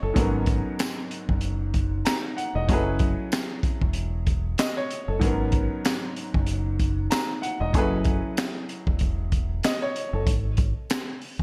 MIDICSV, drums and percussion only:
0, 0, Header, 1, 2, 480
1, 0, Start_track
1, 0, Key_signature, 5, "minor"
1, 0, Tempo, 631579
1, 122, Time_signature, 4, 2, 24, 8
1, 8686, End_track
2, 0, Start_track
2, 0, Title_t, "Drums"
2, 122, Note_on_c, 9, 36, 117
2, 122, Note_on_c, 9, 42, 96
2, 198, Note_off_c, 9, 36, 0
2, 198, Note_off_c, 9, 42, 0
2, 352, Note_on_c, 9, 42, 77
2, 360, Note_on_c, 9, 36, 106
2, 428, Note_off_c, 9, 42, 0
2, 436, Note_off_c, 9, 36, 0
2, 602, Note_on_c, 9, 42, 84
2, 602, Note_on_c, 9, 54, 73
2, 609, Note_on_c, 9, 38, 119
2, 612, Note_on_c, 9, 39, 96
2, 678, Note_off_c, 9, 42, 0
2, 678, Note_off_c, 9, 54, 0
2, 685, Note_off_c, 9, 38, 0
2, 688, Note_off_c, 9, 39, 0
2, 843, Note_on_c, 9, 42, 78
2, 919, Note_off_c, 9, 42, 0
2, 979, Note_on_c, 9, 36, 103
2, 1055, Note_off_c, 9, 36, 0
2, 1070, Note_on_c, 9, 42, 81
2, 1146, Note_off_c, 9, 42, 0
2, 1321, Note_on_c, 9, 42, 74
2, 1324, Note_on_c, 9, 36, 99
2, 1397, Note_off_c, 9, 42, 0
2, 1400, Note_off_c, 9, 36, 0
2, 1561, Note_on_c, 9, 42, 98
2, 1567, Note_on_c, 9, 54, 67
2, 1571, Note_on_c, 9, 38, 106
2, 1573, Note_on_c, 9, 39, 86
2, 1637, Note_off_c, 9, 42, 0
2, 1643, Note_off_c, 9, 54, 0
2, 1647, Note_off_c, 9, 38, 0
2, 1649, Note_off_c, 9, 39, 0
2, 1808, Note_on_c, 9, 42, 78
2, 1884, Note_off_c, 9, 42, 0
2, 2042, Note_on_c, 9, 36, 122
2, 2044, Note_on_c, 9, 42, 96
2, 2118, Note_off_c, 9, 36, 0
2, 2120, Note_off_c, 9, 42, 0
2, 2273, Note_on_c, 9, 42, 77
2, 2281, Note_on_c, 9, 36, 107
2, 2349, Note_off_c, 9, 42, 0
2, 2357, Note_off_c, 9, 36, 0
2, 2522, Note_on_c, 9, 54, 73
2, 2523, Note_on_c, 9, 42, 84
2, 2530, Note_on_c, 9, 38, 115
2, 2533, Note_on_c, 9, 39, 93
2, 2598, Note_off_c, 9, 54, 0
2, 2599, Note_off_c, 9, 42, 0
2, 2606, Note_off_c, 9, 38, 0
2, 2609, Note_off_c, 9, 39, 0
2, 2760, Note_on_c, 9, 36, 106
2, 2763, Note_on_c, 9, 42, 75
2, 2836, Note_off_c, 9, 36, 0
2, 2839, Note_off_c, 9, 42, 0
2, 2899, Note_on_c, 9, 36, 106
2, 2975, Note_off_c, 9, 36, 0
2, 2990, Note_on_c, 9, 42, 80
2, 3066, Note_off_c, 9, 42, 0
2, 3242, Note_on_c, 9, 42, 73
2, 3244, Note_on_c, 9, 36, 100
2, 3318, Note_off_c, 9, 42, 0
2, 3320, Note_off_c, 9, 36, 0
2, 3481, Note_on_c, 9, 42, 102
2, 3488, Note_on_c, 9, 54, 67
2, 3490, Note_on_c, 9, 38, 111
2, 3493, Note_on_c, 9, 39, 87
2, 3557, Note_off_c, 9, 42, 0
2, 3564, Note_off_c, 9, 54, 0
2, 3566, Note_off_c, 9, 38, 0
2, 3569, Note_off_c, 9, 39, 0
2, 3728, Note_on_c, 9, 42, 76
2, 3804, Note_off_c, 9, 42, 0
2, 3963, Note_on_c, 9, 36, 122
2, 3964, Note_on_c, 9, 42, 97
2, 4039, Note_off_c, 9, 36, 0
2, 4040, Note_off_c, 9, 42, 0
2, 4194, Note_on_c, 9, 42, 81
2, 4202, Note_on_c, 9, 36, 107
2, 4270, Note_off_c, 9, 42, 0
2, 4278, Note_off_c, 9, 36, 0
2, 4443, Note_on_c, 9, 54, 71
2, 4444, Note_on_c, 9, 42, 83
2, 4451, Note_on_c, 9, 38, 118
2, 4454, Note_on_c, 9, 39, 96
2, 4519, Note_off_c, 9, 54, 0
2, 4520, Note_off_c, 9, 42, 0
2, 4527, Note_off_c, 9, 38, 0
2, 4530, Note_off_c, 9, 39, 0
2, 4685, Note_on_c, 9, 42, 78
2, 4761, Note_off_c, 9, 42, 0
2, 4821, Note_on_c, 9, 36, 105
2, 4897, Note_off_c, 9, 36, 0
2, 4913, Note_on_c, 9, 42, 81
2, 4989, Note_off_c, 9, 42, 0
2, 5164, Note_on_c, 9, 42, 72
2, 5165, Note_on_c, 9, 36, 96
2, 5240, Note_off_c, 9, 42, 0
2, 5241, Note_off_c, 9, 36, 0
2, 5402, Note_on_c, 9, 42, 99
2, 5409, Note_on_c, 9, 54, 69
2, 5411, Note_on_c, 9, 38, 110
2, 5414, Note_on_c, 9, 39, 87
2, 5478, Note_off_c, 9, 42, 0
2, 5485, Note_off_c, 9, 54, 0
2, 5487, Note_off_c, 9, 38, 0
2, 5490, Note_off_c, 9, 39, 0
2, 5648, Note_on_c, 9, 42, 78
2, 5724, Note_off_c, 9, 42, 0
2, 5883, Note_on_c, 9, 36, 123
2, 5884, Note_on_c, 9, 42, 95
2, 5959, Note_off_c, 9, 36, 0
2, 5960, Note_off_c, 9, 42, 0
2, 6113, Note_on_c, 9, 42, 78
2, 6121, Note_on_c, 9, 36, 112
2, 6189, Note_off_c, 9, 42, 0
2, 6197, Note_off_c, 9, 36, 0
2, 6363, Note_on_c, 9, 42, 84
2, 6364, Note_on_c, 9, 54, 72
2, 6370, Note_on_c, 9, 38, 123
2, 6373, Note_on_c, 9, 39, 96
2, 6439, Note_off_c, 9, 42, 0
2, 6440, Note_off_c, 9, 54, 0
2, 6446, Note_off_c, 9, 38, 0
2, 6449, Note_off_c, 9, 39, 0
2, 6604, Note_on_c, 9, 42, 76
2, 6680, Note_off_c, 9, 42, 0
2, 6740, Note_on_c, 9, 36, 103
2, 6816, Note_off_c, 9, 36, 0
2, 6832, Note_on_c, 9, 42, 80
2, 6848, Note_on_c, 9, 36, 100
2, 6908, Note_off_c, 9, 42, 0
2, 6924, Note_off_c, 9, 36, 0
2, 7083, Note_on_c, 9, 42, 73
2, 7085, Note_on_c, 9, 36, 96
2, 7159, Note_off_c, 9, 42, 0
2, 7161, Note_off_c, 9, 36, 0
2, 7322, Note_on_c, 9, 42, 101
2, 7328, Note_on_c, 9, 54, 70
2, 7331, Note_on_c, 9, 38, 110
2, 7334, Note_on_c, 9, 39, 85
2, 7398, Note_off_c, 9, 42, 0
2, 7404, Note_off_c, 9, 54, 0
2, 7407, Note_off_c, 9, 38, 0
2, 7410, Note_off_c, 9, 39, 0
2, 7568, Note_on_c, 9, 42, 79
2, 7644, Note_off_c, 9, 42, 0
2, 7802, Note_on_c, 9, 36, 120
2, 7804, Note_on_c, 9, 42, 98
2, 7878, Note_off_c, 9, 36, 0
2, 7880, Note_off_c, 9, 42, 0
2, 8033, Note_on_c, 9, 42, 77
2, 8041, Note_on_c, 9, 36, 109
2, 8109, Note_off_c, 9, 42, 0
2, 8117, Note_off_c, 9, 36, 0
2, 8283, Note_on_c, 9, 42, 84
2, 8283, Note_on_c, 9, 54, 73
2, 8290, Note_on_c, 9, 38, 121
2, 8293, Note_on_c, 9, 39, 95
2, 8359, Note_off_c, 9, 42, 0
2, 8359, Note_off_c, 9, 54, 0
2, 8366, Note_off_c, 9, 38, 0
2, 8369, Note_off_c, 9, 39, 0
2, 8523, Note_on_c, 9, 46, 55
2, 8599, Note_off_c, 9, 46, 0
2, 8660, Note_on_c, 9, 36, 103
2, 8686, Note_off_c, 9, 36, 0
2, 8686, End_track
0, 0, End_of_file